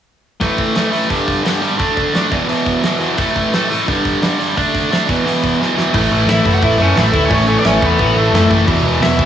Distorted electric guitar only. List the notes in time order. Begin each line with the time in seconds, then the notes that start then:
0.40 A2 E3 A3
0.75 A2 E3 A3
0.91 A2 E3 A3
1.09 G2 D3 G3
1.44 G2 D3 G3
1.62 G2 D3 G3
1.77 D3 A3 D4
2.13 D3 A3 D4
2.31 E2 B2 E3
2.48 E2 B2 E3
2.84 E2 B2 E3
3.00 E2 B2 E3
3.17 A2 E3 A3
3.53 A2 E3 A3
3.69 A2 E3 A3
3.88 G2 D3 G3
4.22 G2 D3 G3
4.39 G2 D3 G3
4.56 D3 A3 D4
4.91 D3 A3 D4
5.08 E2 B2 E3
5.26 E2 B2 E3
5.61 E2 B2 E3
5.76 E2 B2 E3
5.93 A2 E3 A3
6.12 A2 E3 A3
6.28 A2 E3 A3
6.46 A2 E3 A3
6.62 A2 E3 A3
6.78 A2 E3 A3
6.95 A2 E3 A3
7.13 A2 E3 A3
7.30 A2 E3 A3
7.47 A2 E3 A3
7.65 A2 E3 A3
7.82 A2 E3 A3
7.99 A2 E3 A3
8.17 A2 E3 A3
8.34 A2 E3 A3
8.50 A2 E3 A3
8.67 E2 B2 E3
8.84 E2 B2 E3
9.01 E2 B2 E3
9.18 E2 B2 E3